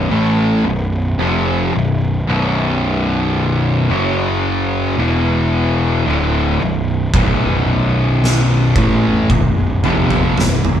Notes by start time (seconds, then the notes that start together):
0.11 A1 A2 E3 A3
0.65 B0 B1 F#2
1.19 F1 F2 C3 F3
1.73 B0 B1 F#2
2.27 B0 B1 F#2 B2
3.89 F#1 F#2 C#3 F#3
4.98 E1 E2 B2 E3
6.06 D1 D2 A2 D3
6.60 B0 B1 F#2
7.14 B0 B1 F#2 B2, kick, floor tom
8.24 snare
8.76 A1 A2 E3 A3, kick, floor tom
9.30 B0 B1 F#2, kick, floor tom
9.84 F1 F2 C3 F3, floor tom
10.10 floor tom
10.38 B0 B1 F#2, snare, floor tom
10.65 floor tom